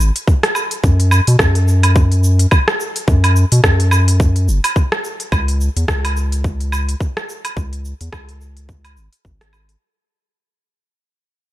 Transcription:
0.00 0.11 G#1 medium
0.00 shaker medium
0.16 open hi-hat medium
0.16 shaker soft
0.28 kick loud
0.28 shaker soft
0.43 cross-stick medium
0.43 open hi-hat soft
0.43 shaker soft
0.55 low woodblock medium
0.55 shaker medium
0.71 open hi-hat soft
0.71 shaker soft
0.84 1.21 F#2 loud
0.84 kick loud
0.84 shaker soft
1.00 open hi-hat soft
1.00 shaker soft
1.11 low woodblock medium
1.11 shaker medium
1.27 1.37 B2 medium
1.27 open hi-hat medium
1.27 shaker soft
1.39 2.47 F#2 medium
1.39 kick loud
1.39 cross-stick medium
1.39 shaker soft
1.55 open hi-hat soft
1.55 shaker soft
1.68 shaker medium
1.83 open hi-hat medium
1.83 low woodblock medium
1.83 shaker soft
1.96 kick loud
1.96 shaker soft
2.12 open hi-hat soft
2.12 shaker soft
2.24 shaker medium
2.39 open hi-hat medium
2.39 shaker soft
2.51 kick loud
2.51 low woodblock medium
2.51 shaker soft
2.68 cross-stick medium
2.68 shaker soft
2.80 shaker medium
2.96 open hi-hat medium
2.96 shaker soft
3.08 3.45 F#2 loud
3.08 kick loud
3.08 shaker soft
3.24 open hi-hat soft
3.24 low woodblock medium
3.24 shaker soft
3.36 shaker medium
3.52 3.61 B2 medium
3.52 open hi-hat medium
3.52 shaker soft
3.64 4.50 F#2 medium
3.64 kick loud
3.64 cross-stick medium
3.64 shaker soft
3.80 open hi-hat soft
3.80 shaker soft
3.91 low woodblock medium
3.91 shaker medium
4.08 open hi-hat medium
4.08 shaker soft
4.20 kick loud
4.20 shaker soft
4.36 open hi-hat soft
4.36 shaker soft
4.48 4.60 F#1 medium
4.48 shaker medium
4.64 open hi-hat medium
4.64 low woodblock medium
4.64 shaker soft
4.76 kick loud
4.76 shaker soft
4.92 cross-stick medium
4.92 shaker soft
5.04 shaker medium
5.20 open hi-hat medium
5.20 shaker soft
5.32 5.69 C#2 loud
5.32 kick loud
5.32 low woodblock medium
5.32 shaker soft
5.48 open hi-hat soft
5.48 shaker soft
5.61 shaker medium
5.76 5.85 E2 medium
5.76 open hi-hat medium
5.76 shaker soft
5.88 6.95 C#2 medium
5.88 kick loud
5.88 cross-stick medium
5.88 shaker soft
6.05 open hi-hat soft
6.05 low woodblock medium
6.05 shaker soft
6.17 shaker medium
6.32 open hi-hat medium
6.32 shaker soft
6.44 kick loud
6.44 shaker soft
6.60 open hi-hat soft
6.60 shaker soft
6.72 low woodblock medium
6.72 shaker medium
6.89 open hi-hat medium
6.89 shaker soft
7.00 kick loud
7.00 shaker soft
7.17 cross-stick medium
7.17 shaker soft
7.29 shaker medium
7.45 open hi-hat medium
7.45 low woodblock medium
7.45 shaker soft
7.57 7.94 C#2 loud
7.57 kick loud
7.57 shaker soft
7.73 open hi-hat soft
7.73 shaker soft
7.85 shaker medium
8.01 8.10 E2 medium
8.01 open hi-hat medium
8.01 shaker soft
8.13 8.98 C#2 medium
8.13 kick loud
8.13 cross-stick medium
8.13 low woodblock medium
8.13 shaker soft
8.29 open hi-hat soft
8.29 shaker soft
8.41 shaker medium
8.57 open hi-hat medium
8.57 shaker soft
8.69 kick loud
8.69 shaker soft
8.85 open hi-hat soft
8.85 low woodblock medium
8.85 shaker soft
8.97 9.09 G#1 medium
8.97 shaker medium
9.13 open hi-hat medium
9.13 shaker soft
9.25 9.76 G#1 medium
9.25 kick loud
9.25 shaker soft
9.41 cross-stick medium
9.41 open hi-hat soft
9.53 low woodblock medium
9.53 shaker medium
9.69 open hi-hat medium
9.69 shaker soft

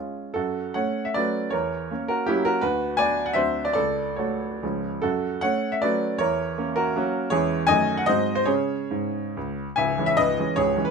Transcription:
0.00 0.32 G#3 soft
0.00 0.32 C#4 soft
0.00 0.32 F4 soft
0.34 0.74 F#2 medium
0.34 0.73 F#4 medium
0.34 0.75 A4 medium
0.74 1.12 A3 soft
0.74 1.12 C#4 soft
0.74 1.04 C#5 medium
0.74 1.06 F#5 medium
1.05 1.15 E5 medium
1.14 1.49 F#3 medium
1.14 1.49 A3 medium
1.14 1.49 C#4 medium
1.14 1.50 B4 medium
1.14 1.52 D5 medium
1.50 1.89 E2 medium
1.50 2.05 A#4 medium
1.50 2.08 C#5 medium
1.91 2.24 A#3 soft
1.91 2.25 C#4 medium
2.08 2.26 F#4 medium
2.08 2.27 A#4 loud
2.27 2.59 F#3 medium
2.27 2.59 A#3 medium
2.27 2.59 C#4 medium
2.27 2.44 E4 medium
2.27 2.45 G4 loud
2.45 2.61 F#4 medium
2.45 2.62 A#4 loud
2.61 2.98 D2 medium
2.61 2.96 F#4 medium
2.61 2.98 B4 loud
2.97 3.34 B3 medium
2.97 3.34 D4 medium
2.97 3.26 D5 medium
2.97 3.27 G#5 loud
3.26 3.36 F#5 medium
3.33 3.75 D2 medium
3.33 3.72 F#3 soft
3.33 3.73 C4 soft
3.33 3.73 D4 soft
3.33 3.64 C5 medium
3.33 3.65 E5 medium
3.65 3.72 D5 medium
3.73 4.18 C#2 medium
3.73 4.15 A4 medium
3.73 4.18 D5 medium
4.16 4.58 A3 soft
4.16 4.58 F#4 soft
4.16 4.59 A4 medium
4.16 4.61 C#5 medium
4.63 5.02 C#2 medium
4.63 4.99 F3 soft
4.63 5.00 G#3 soft
4.63 5.00 C#4 soft
5.02 5.43 F#2 medium
5.02 5.41 F#4 medium
5.02 5.43 A4 medium
5.41 5.80 A3 soft
5.41 5.80 C#4 medium
5.41 5.71 C#5 medium
5.41 5.73 F#5 loud
5.72 5.83 E5 medium
5.82 6.16 F#3 medium
5.82 6.17 A3 medium
5.82 6.17 C#4 medium
5.82 6.17 B4 medium
5.82 6.19 D5 medium
6.18 6.57 E2 medium
6.18 6.73 A#4 medium
6.18 6.77 C#5 loud
6.58 6.93 A#3 medium
6.58 6.93 C#4 medium
6.76 7.28 F#4 medium
6.76 7.32 A#4 loud
6.95 7.28 F#3 medium
6.95 7.29 A#3 medium
6.95 7.29 C#4 medium
7.30 7.68 E2 medium
7.30 7.65 E3 medium
7.30 7.65 G#3 medium
7.30 7.66 C#4 medium
7.30 7.66 G#4 medium
7.30 7.68 C#5 loud
7.67 8.07 F#2 medium
7.67 8.04 D#3 medium
7.67 8.05 A3 medium
7.67 8.05 C#4 medium
7.67 7.96 D#5 loud
7.67 7.97 G#5 loud
7.97 8.08 F#5 medium
8.06 8.47 G#2 medium
8.06 8.44 F#3 medium
8.06 8.45 G#3 medium
8.06 8.45 C4 medium
8.06 8.34 C5 medium
8.06 8.37 D#5 loud
8.35 8.47 C5 medium
8.46 8.78 C#3 medium
8.46 8.82 G#3 soft
8.46 8.82 C#4 medium
8.46 9.52 G#4 medium
8.46 9.56 C#5 medium
8.91 9.22 G#2 medium
9.37 9.66 C#2 medium
9.76 9.97 C#1 medium
9.76 9.97 C#2 medium
9.76 10.05 E5 medium
9.76 10.07 G#5 loud
9.98 10.16 E3 medium
9.98 10.17 G#3 medium
9.98 10.17 C#4 medium
10.06 10.17 E5 loud
10.17 10.38 C#1 medium
10.17 10.38 C#2 medium
10.17 10.54 B4 medium
10.17 10.57 D#5 loud
10.40 10.56 E3 soft
10.40 10.56 G#3 medium
10.40 10.57 C#4 medium
10.56 10.76 C#1 medium
10.56 10.75 C#2 medium
10.56 10.83 G#4 medium
10.56 10.85 C#5 loud
10.76 10.91 E3 medium
10.76 10.91 G#3 medium
10.76 10.91 C#4 medium
10.85 10.91 B4 medium

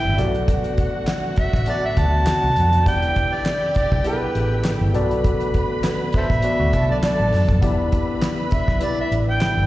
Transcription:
0.00 7.59 D3 medium
0.00 0.16 E3 medium
0.00 0.16 G3 medium
0.00 0.17 B3 medium
0.00 9.66 B3 medium
0.00 0.16 E4 medium
0.00 0.17 E4 medium
0.00 0.20 E4 medium
0.00 0.20 G4 medium
0.00 0.19 D5 medium
0.00 0.17 E5 medium
0.00 0.19 G5 loud
0.05 0.17 G1 medium
0.17 0.71 B1 medium
0.17 2.83 F#3 medium
0.17 2.83 A3 medium
0.17 1.25 B3 medium
0.17 1.25 F#4 medium
0.17 2.83 F#4 medium
0.17 2.82 F#4 medium
0.17 1.26 A4 medium
0.17 1.26 D5 medium
0.17 2.82 F#5 medium
0.17 snare soft
0.17 closed hi-hat medium
0.35 closed hi-hat soft
0.48 kick loud
0.48 closed hi-hat medium
0.64 closed hi-hat medium
0.78 kick medium
0.78 closed hi-hat medium
1.07 snare loud
1.07 clap medium
1.07 closed hi-hat medium
1.36 1.67 E5 medium
1.36 muted fingered electric bass stroke soft
1.36 kick medium
1.36 closed hi-hat medium
1.53 1.66 A1 medium
1.53 kick medium
1.53 snare soft
1.66 2.74 B3 medium
1.66 2.74 F#4 medium
1.66 2.75 A4 medium
1.66 2.75 D5 medium
1.66 closed hi-hat medium
1.70 1.84 D5 loud
1.86 2.00 E5 loud
1.97 2.23 D2 medium
1.97 2.87 A5 loud
1.97 kick medium
1.97 closed hi-hat medium
2.26 snare loud
2.26 clap medium
2.26 closed hi-hat medium
2.43 2.55 C2 medium
2.56 2.83 F2 medium
2.56 closed hi-hat medium
2.73 closed hi-hat medium
2.85 3.13 E1 loud
2.85 4.92 E3 medium
2.85 4.92 G3 medium
2.85 3.93 B3 medium
2.85 3.94 E4 medium
2.85 4.93 E4 medium
2.85 4.91 G4 medium
2.85 3.94 G4 medium
2.85 3.94 D5 medium
2.85 4.91 G5 medium
2.85 3.36 G5 loud
2.85 kick loud
2.85 closed hi-hat medium
3.02 closed hi-hat medium
3.16 kick medium
3.16 closed hi-hat medium
3.34 3.77 D5 loud
3.46 snare loud
3.46 clap medium
3.46 closed hi-hat medium
3.75 4.04 D5 medium
3.75 muted fingered electric bass stroke soft
3.75 kick medium
3.75 closed hi-hat medium
3.92 4.04 B1 medium
3.92 kick medium
4.04 4.92 B3 medium
4.04 4.94 E4 medium
4.04 4.95 G4 medium
4.04 4.13 G#4 medium
4.04 4.92 B4 medium
4.04 closed hi-hat medium
4.13 4.94 A4 medium
4.35 4.61 A1 medium
4.35 closed hi-hat medium
4.64 snare loud
4.64 clap medium
4.64 closed hi-hat medium
4.81 4.93 G1 medium
4.94 5.47 B1 medium
4.94 7.60 F#3 medium
4.94 7.60 A3 medium
4.94 6.02 B3 loud
4.94 6.02 F#4 medium
4.94 7.60 F#4 medium
4.94 6.02 A4 medium
4.94 6.70 B4 medium
4.94 6.03 D5 loud
4.94 6.70 B5 medium
4.94 closed hi-hat medium
5.11 closed hi-hat medium
5.24 kick loud
5.24 closed hi-hat medium
5.40 closed hi-hat medium
5.54 kick medium
5.54 closed hi-hat medium
5.84 snare loud
5.84 clap medium
5.84 closed hi-hat medium
6.13 muted fingered electric bass stroke soft
6.13 kick medium
6.13 closed hi-hat medium
6.17 6.26 A4 medium
6.17 6.26 C5 medium
6.17 6.87 E5 loud
6.30 6.42 A1 medium
6.30 kick medium
6.30 snare soft
6.42 7.51 B3 medium
6.42 7.51 F#4 medium
6.42 7.51 A4 medium
6.42 7.51 D5 medium
6.42 closed hi-hat medium
6.60 6.75 D2 medium
6.60 6.73 A3 medium
6.60 6.73 F#4 medium
6.73 6.89 C2 medium
6.73 6.89 E4 medium
6.73 7.61 A4 medium
6.73 7.61 A5 medium
6.73 kick medium
6.73 closed hi-hat medium
6.89 7.01 B1 medium
6.89 7.60 F#3 medium
6.89 7.59 D4 medium
6.89 6.97 D5 medium
7.03 7.47 D5 medium
7.03 snare loud
7.03 clap medium
7.03 closed hi-hat medium
7.20 7.31 A1 medium
7.33 7.47 F#2 medium
7.33 snare soft
7.33 open hi-hat medium
7.48 7.61 F2 medium
7.48 kick medium
7.48 closed hi-hat soft
7.61 7.89 E1 loud
7.61 9.66 D3 medium
7.61 9.66 E3 medium
7.61 9.66 G3 medium
7.61 8.69 B3 medium
7.61 9.66 E4 medium
7.61 8.70 E4 medium
7.61 8.70 G4 medium
7.61 9.66 B4 medium
7.61 8.71 D5 loud
7.61 9.66 B5 medium
7.61 kick loud
7.61 closed hi-hat medium
7.92 kick medium
7.92 closed hi-hat medium
8.22 snare loud
8.22 clap medium
8.22 closed hi-hat medium
8.51 8.86 E5 medium
8.51 muted fingered electric bass stroke soft
8.51 kick medium
8.51 closed hi-hat medium
8.68 8.80 B1 medium
8.68 kick medium
8.68 snare soft
8.81 9.66 B3 medium
8.81 9.66 E4 medium
8.81 9.66 G4 medium
8.81 9.66 D5 medium
8.81 8.99 D5 loud
8.81 closed hi-hat medium
9.01 9.14 E5 medium
9.11 9.38 A1 medium
9.11 closed hi-hat medium
9.30 9.66 G5 loud
9.41 snare loud
9.41 clap medium
9.41 closed hi-hat medium
9.57 9.66 G1 medium

